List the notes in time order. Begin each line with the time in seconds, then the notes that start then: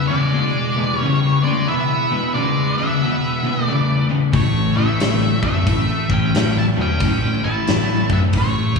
Already playing: B3 E4 G#4 B4
0.08 E2 C#3 G#3 D5
0.34 E2 B2
0.75 E2 B2 B3 E4 G#4 B4
0.95 G3 C#5
1.01 E2 C#3
1.43 E2 C#3 G#3 D5
1.67 E2 B2 B3 E4 G#4 B4 E5
2.11 E2 B2
2.34 E2 C#3 G#3 D5
2.78 E2 C#3 B3 E5
3.02 E2 B2
3.43 E2 B2 B3 E4 G#4 B4
3.65 E2 C#3 A3 D5
4.09 E2 C#3
4.31 A1 A2 E3 A3 C#4 E4 A4 C#5, kick, open hi-hat
4.76 A1 A2 E3 A3 E5
5.00 A1 A2 F#3, snare, open hi-hat
5.42 F#2 A2 F#3 A3 E5, kick
5.67 A1 A2 E3, kick, open hi-hat
6.09 A1 A2 E3 C#4 E4 A4 C#5 G5, kick
6.34 A1 A2 F#3, snare, open hi-hat
6.59 E4 A5
6.77 E1 A2 F#3
6.81 C#4 G5
6.98 A1 A2 E3 C#4 E4 A4 C#5, kick, open hi-hat
7.43 A1 A2 E3 E4 A5
7.67 A1 A2 F#3, snare, open hi-hat
8.10 F#2 A2 F#3 B3 E5, kick
8.33 A1 A2 E3, kick, open hi-hat
8.37 A3 C#5
8.74 A1 C#4 E4 A4 C#5, kick